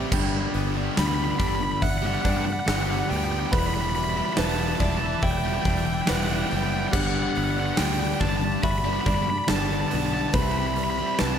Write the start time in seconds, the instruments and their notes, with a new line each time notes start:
Already playing: clean electric guitar E3 G4, distorted electric guitar G3 E4 G4, string section G3 B5, felt piano B4
0.11 fingered electric bass G1, distorted electric guitar G2 D3 G3 B3 D4 G4, string section D5, felt piano G5, kick, crash
0.54 fingered electric bass G1, clean electric guitar B3, open hi-hat
0.75 distorted electric guitar G3 B3 D4 G4
0.96 fingered electric bass D2, distorted electric guitar G2 D3 G3 B3 D4 G4, lead electric guitar B5, snare, open hi-hat
1.07 lead electric guitar B5
1.15 lead electric guitar B5
1.24 lead electric guitar B5
1.31 lead electric guitar B5
1.39 fingered electric bass G1, distorted electric guitar G3 B3 D4 G4, lead electric guitar B5, kick, open hi-hat
1.48 lead electric guitar B5
1.55 lead electric guitar B5
1.60 lead electric guitar B5, muted distorted electric guitar stroke
1.72 lead electric guitar B5
1.82 fingered electric bass G1, felt piano E5, lead electric guitar F#5, kick, open hi-hat
1.91 lead electric guitar F#5
1.98 lead electric guitar F#5
2.02 distorted electric guitar G3 B3 D4 G4
2.06 lead electric guitar F#5
2.14 lead electric guitar F#5
2.21 fingered electric bass G2, distorted electric guitar G3 B3, felt piano D5, lead electric guitar F#5, kick, open hi-hat
2.26 distorted electric guitar D4 G4, lead electric guitar F#5
2.37 lead electric guitar F#5
2.45 lead electric guitar F#5, muted distorted electric guitar stroke
2.53 lead electric guitar F#5
2.60 lead electric guitar F#5
2.66 fingered electric bass G1, distorted electric guitar G2 D3 G3 B3 D4 G4, lead electric guitar F#5, snare, open hi-hat
2.76 lead electric guitar F#5
2.83 lead electric guitar F#5
2.87 distorted electric guitar G3 B3 D4 G4, lead electric guitar F#5
2.99 lead electric guitar F#5
3.09 fingered electric bass D2, distorted electric guitar G3 B3 D4 G4, lead electric guitar G5, open hi-hat
3.17 lead electric guitar G5
3.25 lead electric guitar G5
3.32 lead electric guitar G5
3.40 lead electric guitar G5
3.46 lead electric guitar G5
3.51 fingered electric bass E1, clean electric guitar E2, distorted electric guitar E3 G3 B3 E4, felt piano B4, string section E5, lead electric guitar B5, kick, open hi-hat
3.59 lead electric guitar B5
3.66 lead electric guitar B5
3.74 lead electric guitar B5
3.81 lead electric guitar B5
3.90 lead electric guitar B5
3.95 clean electric guitar B2, lead electric guitar B5, open hi-hat
4.04 lead electric guitar B5
4.10 lead electric guitar B5
4.15 distorted electric guitar G3 B3 E4, lead electric guitar B5
4.25 lead electric guitar B5
4.33 distorted electric guitar E3, lead electric guitar B5, snare, open hi-hat
4.38 fingered electric bass E1, distorted electric guitar G3 B3 E4, felt piano B4, lead electric guitar A5
4.45 lead electric guitar A5
4.52 lead electric guitar A5
4.60 lead electric guitar A5
4.68 lead electric guitar A5
4.75 distorted electric guitar E3, lead electric guitar A5
4.80 fingered electric bass E1, distorted electric guitar G3 B3 E4, clean electric guitar D4, felt piano D5, lead electric guitar A5, kick, open hi-hat
4.90 lead electric guitar A5
4.98 lead electric guitar A5, muted distorted electric guitar stroke
5.06 lead electric guitar A5
5.13 lead electric guitar A5
5.22 fingered electric bass E1, clean electric guitar E4, felt piano E5, lead electric guitar G5, kick, open hi-hat
5.31 lead electric guitar G5
5.38 lead electric guitar G5
5.43 distorted electric guitar G3 B3 E4, lead electric guitar G5
5.54 lead electric guitar G5
5.62 fingered electric bass E1, distorted electric guitar E3 G3, clean electric guitar D4, lead electric guitar G5, kick, open hi-hat
5.67 distorted electric guitar B3 E4, lead electric guitar G5
5.78 lead electric guitar G5
5.86 lead electric guitar G5, muted distorted electric guitar stroke
5.94 lead electric guitar G5
6.02 lead electric guitar G5
6.06 fingered electric bass E1, distorted electric guitar E3 G3 B3 E4, felt piano B4, lead electric guitar F#5 G5, snare, open hi-hat
6.15 lead electric guitar F#5 G5
6.23 lead electric guitar F#5 G5
6.28 distorted electric guitar G3 B3 E4, lead electric guitar F#5
6.32 lead electric guitar G5
6.38 lead electric guitar F#5 G5
6.44 lead electric guitar F#5
6.50 fingered electric bass F#1, distorted electric guitar E3 G3 B3 E4, lead electric guitar G5, open hi-hat
6.57 lead electric guitar G5
6.64 lead electric guitar G5
6.72 lead electric guitar G5
6.80 lead electric guitar G5
6.87 lead electric guitar G5
6.92 fingered electric bass G1, distorted electric guitar G2 D3 G3 B3 D4, felt piano G4, lead electric guitar F#5, kick, crash
7.00 lead electric guitar F#5
7.06 lead electric guitar F#5
7.15 lead electric guitar F#5
7.22 lead electric guitar F#5
7.30 lead electric guitar F#5
7.35 fingered electric bass G1, clean electric guitar B3, lead electric guitar F#5, open hi-hat
7.44 lead electric guitar F#5
7.51 lead electric guitar F#5
7.56 distorted electric guitar G3 B3 D4, lead electric guitar F#5
7.66 lead electric guitar F#5
7.74 distorted electric guitar G2 D3, lead electric guitar F#5 G5, snare, open hi-hat
7.79 fingered electric bass D2, distorted electric guitar G3 B3 D4
7.86 lead electric guitar G5
7.93 lead electric guitar G5
8.00 lead electric guitar G5
8.07 lead electric guitar G5
8.14 lead electric guitar G5
8.20 fingered electric bass G1, distorted electric guitar D3 G3 B3 D4, lead electric guitar A5, kick, open hi-hat
8.29 lead electric guitar A5
8.37 lead electric guitar A5
8.43 lead electric guitar A5, muted distorted electric guitar stroke
8.53 lead electric guitar A5
8.63 fingered electric bass G1, clean electric guitar F#4, felt piano E5, lead electric guitar B5, kick, open hi-hat
8.71 lead electric guitar B5
8.78 lead electric guitar B5
8.84 distorted electric guitar G3 B3 D4, lead electric guitar B5
8.93 lead electric guitar B5
9.01 distorted electric guitar D3, lead electric guitar B5
9.06 fingered electric bass G2, distorted electric guitar G3 B3 D4, felt piano D5, lead electric guitar B5, kick, open hi-hat
9.15 lead electric guitar B5
9.23 lead electric guitar B5
9.27 lead electric guitar B5, muted distorted electric guitar stroke
9.38 lead electric guitar B5
9.44 distorted electric guitar G2 D3, lead electric guitar B5, snare, open hi-hat
9.49 fingered electric bass G1, distorted electric guitar G3 B3 D4, lead electric guitar A5
9.56 lead electric guitar A5
9.64 lead electric guitar A5
9.69 distorted electric guitar G3 B3 D4
9.73 lead electric guitar A5
9.80 lead electric guitar A5
9.88 distorted electric guitar D3 G3, lead electric guitar A5, open hi-hat
9.93 fingered electric bass B1, distorted electric guitar B3 D4, lead electric guitar A5
10.06 lead electric guitar A5
10.14 lead electric guitar A5
10.21 lead electric guitar A5
10.29 felt piano B4, lead electric guitar A5, open hi-hat
10.34 fingered electric bass C2, distorted electric guitar C3 G3 C4 E4, string section C4 E5, lead electric guitar B5, kick
10.43 lead electric guitar B5
10.51 lead electric guitar B5
10.58 lead electric guitar B5
10.67 lead electric guitar B5
10.74 clean electric guitar G3, lead electric guitar B5, open hi-hat
10.84 lead electric guitar B5
10.90 lead electric guitar B5
10.98 distorted electric guitar G3 C4 E4, lead electric guitar B5
11.07 lead electric guitar B5
11.15 distorted electric guitar C3, felt piano B4, lead electric guitar B5, snare, open hi-hat
11.20 fingered electric bass C2, distorted electric guitar G3 C4 E4, lead electric guitar A5
11.27 lead electric guitar A5
11.35 lead electric guitar A5